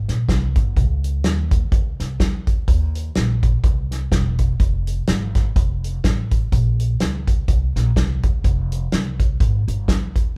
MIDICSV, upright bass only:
0, 0, Header, 1, 2, 480
1, 0, Start_track
1, 0, Tempo, 479616
1, 765, Time_signature, 4, 2, 24, 8
1, 10378, End_track
2, 0, Start_track
2, 0, Title_t, "Upright bass"
2, 0, Program_c, 0, 32
2, 87, Note_on_c, 0, 34, 73
2, 259, Note_off_c, 0, 34, 0
2, 285, Note_on_c, 0, 36, 85
2, 518, Note_off_c, 0, 36, 0
2, 558, Note_on_c, 0, 31, 89
2, 764, Note_on_c, 0, 37, 92
2, 779, Note_off_c, 0, 31, 0
2, 1246, Note_off_c, 0, 37, 0
2, 1246, Note_on_c, 0, 39, 79
2, 1653, Note_off_c, 0, 39, 0
2, 1720, Note_on_c, 0, 37, 73
2, 1955, Note_off_c, 0, 37, 0
2, 1998, Note_on_c, 0, 36, 76
2, 2173, Note_off_c, 0, 36, 0
2, 2200, Note_on_c, 0, 38, 82
2, 2609, Note_off_c, 0, 38, 0
2, 2682, Note_on_c, 0, 39, 92
2, 3090, Note_off_c, 0, 39, 0
2, 3168, Note_on_c, 0, 34, 86
2, 3574, Note_off_c, 0, 34, 0
2, 3637, Note_on_c, 0, 36, 78
2, 4047, Note_off_c, 0, 36, 0
2, 4119, Note_on_c, 0, 28, 81
2, 4529, Note_off_c, 0, 28, 0
2, 4601, Note_on_c, 0, 29, 93
2, 5010, Note_off_c, 0, 29, 0
2, 5087, Note_on_c, 0, 32, 73
2, 5494, Note_off_c, 0, 32, 0
2, 5563, Note_on_c, 0, 29, 90
2, 5971, Note_off_c, 0, 29, 0
2, 6044, Note_on_c, 0, 33, 84
2, 6452, Note_off_c, 0, 33, 0
2, 6528, Note_on_c, 0, 34, 95
2, 6935, Note_off_c, 0, 34, 0
2, 7010, Note_on_c, 0, 37, 80
2, 7417, Note_off_c, 0, 37, 0
2, 7487, Note_on_c, 0, 36, 72
2, 7720, Note_off_c, 0, 36, 0
2, 7765, Note_on_c, 0, 34, 86
2, 7939, Note_off_c, 0, 34, 0
2, 7971, Note_on_c, 0, 36, 77
2, 8202, Note_off_c, 0, 36, 0
2, 8241, Note_on_c, 0, 37, 78
2, 8416, Note_off_c, 0, 37, 0
2, 8449, Note_on_c, 0, 29, 95
2, 8857, Note_off_c, 0, 29, 0
2, 8935, Note_on_c, 0, 36, 78
2, 9341, Note_off_c, 0, 36, 0
2, 9409, Note_on_c, 0, 32, 88
2, 9642, Note_off_c, 0, 32, 0
2, 9685, Note_on_c, 0, 31, 76
2, 9860, Note_off_c, 0, 31, 0
2, 9889, Note_on_c, 0, 38, 81
2, 10298, Note_off_c, 0, 38, 0
2, 10378, End_track
0, 0, End_of_file